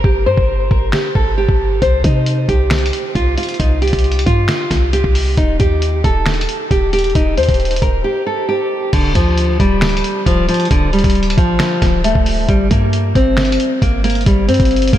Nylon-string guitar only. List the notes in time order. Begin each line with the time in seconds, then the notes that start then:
0.04 G4
0.26 C5
0.71 A#4
0.93 G4
1.15 A4
1.38 G4
1.82 C5
2.04 D#4
2.49 G4
3.15 F4
3.38 F4
3.60 D#4
3.82 G4
4.26 F4
4.93 G4
5.38 D#4
5.60 G4
6.04 A4
6.71 G4
6.93 G4
7.15 D#4
7.37 C5
7.82 A#4
8.04 G4
8.27 A4
8.49 G4
8.93 D3
9.15 F3
9.60 G3
10.26 F3
10.49 F3
10.71 D3
10.93 G3
11.38 F3
12.04 A3
12.49 G3
12.71 A#3
13.15 C4
13.82 A#3
14.04 A#3
14.26 G3
14.48 C4
14.93 A#3